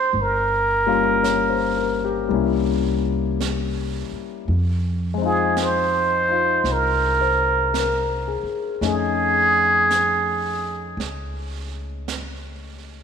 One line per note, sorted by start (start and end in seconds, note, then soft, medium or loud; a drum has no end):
0.00 0.14 G#3 soft
0.00 0.14 C4 soft
0.00 0.14 C#4 soft
0.00 0.15 D#4 soft
0.00 0.16 F4 soft
0.00 0.23 C5 medium
0.13 2.26 G1 medium
0.13 brush sweep soft
0.21 2.35 A#4 medium
0.86 2.27 G3 soft
0.86 2.29 A#3 soft
0.86 2.30 C#4 soft
0.86 2.32 F4 soft
1.23 1.73 C#5 soft
1.23 brush sweep soft
1.23 snare soft
1.23 hi-hat pedal soft
1.50 1.95 C5 soft
1.77 2.11 A#4 soft
2.04 2.42 G4 soft
2.29 4.06 C2 medium
2.29 4.47 G3 soft
2.29 4.47 A#3 soft
2.29 4.48 C#4 soft
2.33 4.49 E4 soft
2.33 brush sweep soft
3.40 brush sweep soft
3.40 snare soft
3.40 hi-hat pedal soft
4.12 muted upright bass stroke soft
4.48 6.60 F2 medium
4.48 brush sweep soft
5.14 8.79 G#3 soft
5.14 8.81 C4 soft
5.22 6.27 D#4 soft
5.22 6.30 F4 soft
5.22 5.64 G#4 medium
5.57 brush sweep soft
5.57 snare soft
5.57 hi-hat pedal soft
5.63 6.73 C5 medium
6.29 8.81 D#4 soft
6.29 8.83 F4 soft
6.64 8.40 C2 medium
6.64 brush sweep soft
6.64 snare soft
6.72 8.48 A#4 medium
7.21 7.97 C5 soft
7.74 8.59 A#4 soft
7.74 brush sweep soft
7.74 snare soft
7.74 hi-hat pedal soft
8.28 8.82 G#4 soft
8.43 muted upright bass stroke soft
8.81 10.94 F2 medium
8.81 13.03 A3 soft
8.81 13.03 C#4 soft
8.81 13.03 D#4 soft
8.81 13.03 G#4 soft
8.81 10.96 G#4 medium
8.81 brush sweep soft
8.81 snare soft
9.91 brush sweep soft
9.91 snare soft
9.91 hi-hat pedal soft
10.97 13.03 C#2 medium
10.97 brush sweep soft
10.97 snare soft
12.08 brush sweep soft
12.08 snare soft
12.08 hi-hat pedal soft